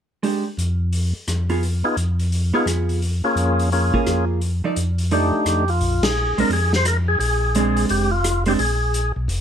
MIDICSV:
0, 0, Header, 1, 5, 480
1, 0, Start_track
1, 0, Tempo, 348432
1, 324, Time_signature, 4, 2, 24, 8
1, 12960, End_track
2, 0, Start_track
2, 0, Title_t, "Tonewheel organ"
2, 0, Program_c, 0, 16
2, 2539, Note_on_c, 0, 59, 62
2, 2543, Note_on_c, 0, 63, 54
2, 2549, Note_on_c, 0, 68, 64
2, 2552, Note_on_c, 0, 65, 56
2, 2705, Note_off_c, 0, 59, 0
2, 2707, Note_off_c, 0, 63, 0
2, 2710, Note_off_c, 0, 68, 0
2, 2711, Note_off_c, 0, 65, 0
2, 3503, Note_on_c, 0, 59, 60
2, 3507, Note_on_c, 0, 63, 51
2, 3516, Note_on_c, 0, 68, 68
2, 3517, Note_on_c, 0, 65, 56
2, 3667, Note_off_c, 0, 59, 0
2, 3669, Note_off_c, 0, 63, 0
2, 3674, Note_off_c, 0, 65, 0
2, 3674, Note_off_c, 0, 68, 0
2, 4463, Note_on_c, 0, 58, 64
2, 4470, Note_on_c, 0, 61, 65
2, 4471, Note_on_c, 0, 65, 56
2, 4473, Note_on_c, 0, 68, 73
2, 5090, Note_off_c, 0, 58, 0
2, 5093, Note_off_c, 0, 61, 0
2, 5094, Note_off_c, 0, 65, 0
2, 5095, Note_off_c, 0, 68, 0
2, 5129, Note_on_c, 0, 58, 47
2, 5133, Note_on_c, 0, 61, 51
2, 5136, Note_on_c, 0, 65, 50
2, 5138, Note_on_c, 0, 68, 53
2, 5853, Note_off_c, 0, 58, 0
2, 5855, Note_off_c, 0, 61, 0
2, 5856, Note_off_c, 0, 65, 0
2, 5857, Note_off_c, 0, 68, 0
2, 7059, Note_on_c, 0, 57, 50
2, 7064, Note_on_c, 0, 63, 43
2, 7068, Note_on_c, 0, 62, 48
2, 7073, Note_on_c, 0, 67, 58
2, 7539, Note_off_c, 0, 67, 0
2, 7555, Note_on_c, 0, 67, 83
2, 7777, Note_off_c, 0, 57, 0
2, 7779, Note_off_c, 0, 63, 0
2, 7782, Note_off_c, 0, 62, 0
2, 7841, Note_on_c, 0, 65, 88
2, 7855, Note_off_c, 0, 67, 0
2, 8309, Note_on_c, 0, 68, 99
2, 8331, Note_off_c, 0, 65, 0
2, 8805, Note_off_c, 0, 68, 0
2, 8813, Note_on_c, 0, 70, 88
2, 8967, Note_off_c, 0, 70, 0
2, 8998, Note_on_c, 0, 68, 83
2, 9266, Note_off_c, 0, 68, 0
2, 9308, Note_on_c, 0, 72, 96
2, 9455, Note_off_c, 0, 72, 0
2, 9475, Note_on_c, 0, 70, 96
2, 9606, Note_off_c, 0, 70, 0
2, 9757, Note_on_c, 0, 68, 90
2, 9900, Note_off_c, 0, 68, 0
2, 9917, Note_on_c, 0, 68, 94
2, 10825, Note_off_c, 0, 68, 0
2, 10890, Note_on_c, 0, 67, 81
2, 11170, Note_off_c, 0, 67, 0
2, 11178, Note_on_c, 0, 65, 91
2, 11629, Note_off_c, 0, 65, 0
2, 11683, Note_on_c, 0, 67, 80
2, 11759, Note_off_c, 0, 67, 0
2, 11838, Note_on_c, 0, 68, 75
2, 12568, Note_off_c, 0, 68, 0
2, 12960, End_track
3, 0, Start_track
3, 0, Title_t, "Hollow-body jazz guitar"
3, 0, Program_c, 1, 26
3, 317, Note_on_c, 1, 56, 51
3, 331, Note_on_c, 1, 62, 49
3, 340, Note_on_c, 1, 67, 57
3, 594, Note_off_c, 1, 56, 0
3, 601, Note_off_c, 1, 62, 0
3, 606, Note_off_c, 1, 67, 0
3, 2061, Note_on_c, 1, 59, 46
3, 2065, Note_on_c, 1, 65, 54
3, 2082, Note_on_c, 1, 68, 52
3, 2226, Note_off_c, 1, 59, 0
3, 2227, Note_off_c, 1, 65, 0
3, 2236, Note_off_c, 1, 68, 0
3, 3492, Note_on_c, 1, 59, 47
3, 3498, Note_on_c, 1, 65, 57
3, 3510, Note_on_c, 1, 68, 64
3, 4125, Note_off_c, 1, 59, 0
3, 4127, Note_off_c, 1, 65, 0
3, 4133, Note_off_c, 1, 68, 0
3, 5423, Note_on_c, 1, 58, 55
3, 5424, Note_on_c, 1, 65, 63
3, 5437, Note_on_c, 1, 68, 68
3, 6050, Note_off_c, 1, 58, 0
3, 6050, Note_off_c, 1, 65, 0
3, 6057, Note_off_c, 1, 68, 0
3, 6395, Note_on_c, 1, 53, 51
3, 6405, Note_on_c, 1, 69, 48
3, 6407, Note_on_c, 1, 63, 45
3, 6410, Note_on_c, 1, 74, 49
3, 6553, Note_off_c, 1, 53, 0
3, 6559, Note_off_c, 1, 63, 0
3, 6559, Note_off_c, 1, 69, 0
3, 6561, Note_off_c, 1, 74, 0
3, 7045, Note_on_c, 1, 53, 57
3, 7048, Note_on_c, 1, 63, 51
3, 7055, Note_on_c, 1, 69, 50
3, 7062, Note_on_c, 1, 74, 56
3, 7321, Note_off_c, 1, 53, 0
3, 7322, Note_off_c, 1, 63, 0
3, 7325, Note_off_c, 1, 69, 0
3, 7329, Note_off_c, 1, 74, 0
3, 8789, Note_on_c, 1, 56, 58
3, 8811, Note_on_c, 1, 60, 60
3, 8816, Note_on_c, 1, 62, 64
3, 8949, Note_off_c, 1, 56, 0
3, 8961, Note_off_c, 1, 60, 0
3, 8963, Note_off_c, 1, 62, 0
3, 10410, Note_on_c, 1, 56, 65
3, 10412, Note_on_c, 1, 60, 61
3, 10427, Note_on_c, 1, 62, 56
3, 11129, Note_off_c, 1, 56, 0
3, 11131, Note_off_c, 1, 60, 0
3, 11138, Note_off_c, 1, 62, 0
3, 11659, Note_on_c, 1, 56, 61
3, 11672, Note_on_c, 1, 60, 68
3, 11684, Note_on_c, 1, 62, 66
3, 11822, Note_off_c, 1, 56, 0
3, 11829, Note_off_c, 1, 60, 0
3, 11834, Note_off_c, 1, 62, 0
3, 12960, End_track
4, 0, Start_track
4, 0, Title_t, "Tonewheel organ"
4, 0, Program_c, 2, 16
4, 791, Note_on_c, 2, 41, 76
4, 1563, Note_off_c, 2, 41, 0
4, 1757, Note_on_c, 2, 41, 66
4, 2527, Note_off_c, 2, 41, 0
4, 2706, Note_on_c, 2, 41, 79
4, 3482, Note_off_c, 2, 41, 0
4, 3660, Note_on_c, 2, 41, 63
4, 4439, Note_off_c, 2, 41, 0
4, 4619, Note_on_c, 2, 41, 76
4, 5399, Note_off_c, 2, 41, 0
4, 5598, Note_on_c, 2, 41, 64
4, 6368, Note_off_c, 2, 41, 0
4, 6562, Note_on_c, 2, 41, 74
4, 7330, Note_off_c, 2, 41, 0
4, 7511, Note_on_c, 2, 41, 62
4, 7991, Note_on_c, 2, 34, 81
4, 8283, Note_off_c, 2, 41, 0
4, 8728, Note_off_c, 2, 34, 0
4, 8780, Note_on_c, 2, 34, 30
4, 8871, Note_off_c, 2, 34, 0
4, 8948, Note_on_c, 2, 41, 84
4, 9868, Note_off_c, 2, 41, 0
4, 9910, Note_on_c, 2, 34, 83
4, 10829, Note_off_c, 2, 34, 0
4, 10879, Note_on_c, 2, 29, 88
4, 11793, Note_off_c, 2, 29, 0
4, 11833, Note_on_c, 2, 34, 77
4, 12566, Note_off_c, 2, 34, 0
4, 12622, Note_on_c, 2, 35, 54
4, 12786, Note_on_c, 2, 29, 89
4, 12788, Note_off_c, 2, 35, 0
4, 12960, Note_off_c, 2, 29, 0
4, 12960, End_track
5, 0, Start_track
5, 0, Title_t, "Drums"
5, 321, Note_on_c, 9, 46, 31
5, 459, Note_off_c, 9, 46, 0
5, 808, Note_on_c, 9, 42, 34
5, 945, Note_off_c, 9, 42, 0
5, 1275, Note_on_c, 9, 46, 40
5, 1413, Note_off_c, 9, 46, 0
5, 1758, Note_on_c, 9, 42, 41
5, 1761, Note_on_c, 9, 37, 54
5, 1896, Note_off_c, 9, 42, 0
5, 1899, Note_off_c, 9, 37, 0
5, 2059, Note_on_c, 9, 46, 28
5, 2197, Note_off_c, 9, 46, 0
5, 2243, Note_on_c, 9, 46, 35
5, 2381, Note_off_c, 9, 46, 0
5, 2715, Note_on_c, 9, 42, 33
5, 2853, Note_off_c, 9, 42, 0
5, 3023, Note_on_c, 9, 46, 31
5, 3161, Note_off_c, 9, 46, 0
5, 3199, Note_on_c, 9, 46, 40
5, 3337, Note_off_c, 9, 46, 0
5, 3680, Note_on_c, 9, 42, 46
5, 3683, Note_on_c, 9, 37, 56
5, 3818, Note_off_c, 9, 42, 0
5, 3821, Note_off_c, 9, 37, 0
5, 3983, Note_on_c, 9, 46, 28
5, 4121, Note_off_c, 9, 46, 0
5, 4163, Note_on_c, 9, 46, 37
5, 4300, Note_off_c, 9, 46, 0
5, 4638, Note_on_c, 9, 42, 33
5, 4776, Note_off_c, 9, 42, 0
5, 4952, Note_on_c, 9, 46, 32
5, 5089, Note_off_c, 9, 46, 0
5, 5125, Note_on_c, 9, 46, 37
5, 5263, Note_off_c, 9, 46, 0
5, 5423, Note_on_c, 9, 36, 38
5, 5561, Note_off_c, 9, 36, 0
5, 5600, Note_on_c, 9, 42, 42
5, 5603, Note_on_c, 9, 37, 61
5, 5738, Note_off_c, 9, 42, 0
5, 5740, Note_off_c, 9, 37, 0
5, 6081, Note_on_c, 9, 46, 36
5, 6219, Note_off_c, 9, 46, 0
5, 6561, Note_on_c, 9, 42, 39
5, 6699, Note_off_c, 9, 42, 0
5, 6865, Note_on_c, 9, 46, 36
5, 7003, Note_off_c, 9, 46, 0
5, 7040, Note_on_c, 9, 46, 39
5, 7178, Note_off_c, 9, 46, 0
5, 7520, Note_on_c, 9, 42, 45
5, 7523, Note_on_c, 9, 37, 57
5, 7658, Note_off_c, 9, 42, 0
5, 7661, Note_off_c, 9, 37, 0
5, 7824, Note_on_c, 9, 46, 31
5, 7962, Note_off_c, 9, 46, 0
5, 8001, Note_on_c, 9, 46, 39
5, 8139, Note_off_c, 9, 46, 0
5, 8306, Note_on_c, 9, 51, 52
5, 8309, Note_on_c, 9, 38, 66
5, 8444, Note_off_c, 9, 51, 0
5, 8447, Note_off_c, 9, 38, 0
5, 8793, Note_on_c, 9, 46, 37
5, 8931, Note_off_c, 9, 46, 0
5, 8961, Note_on_c, 9, 46, 44
5, 9098, Note_off_c, 9, 46, 0
5, 9271, Note_on_c, 9, 38, 45
5, 9409, Note_off_c, 9, 38, 0
5, 9439, Note_on_c, 9, 42, 55
5, 9442, Note_on_c, 9, 37, 59
5, 9577, Note_off_c, 9, 42, 0
5, 9580, Note_off_c, 9, 37, 0
5, 9924, Note_on_c, 9, 46, 41
5, 10062, Note_off_c, 9, 46, 0
5, 10397, Note_on_c, 9, 42, 42
5, 10535, Note_off_c, 9, 42, 0
5, 10698, Note_on_c, 9, 46, 38
5, 10836, Note_off_c, 9, 46, 0
5, 10873, Note_on_c, 9, 46, 44
5, 11011, Note_off_c, 9, 46, 0
5, 11355, Note_on_c, 9, 42, 55
5, 11358, Note_on_c, 9, 37, 58
5, 11493, Note_off_c, 9, 42, 0
5, 11496, Note_off_c, 9, 37, 0
5, 11648, Note_on_c, 9, 46, 36
5, 11786, Note_off_c, 9, 46, 0
5, 11834, Note_on_c, 9, 46, 44
5, 11971, Note_off_c, 9, 46, 0
5, 12317, Note_on_c, 9, 42, 45
5, 12454, Note_off_c, 9, 42, 0
5, 12797, Note_on_c, 9, 46, 48
5, 12935, Note_off_c, 9, 46, 0
5, 12960, End_track
0, 0, End_of_file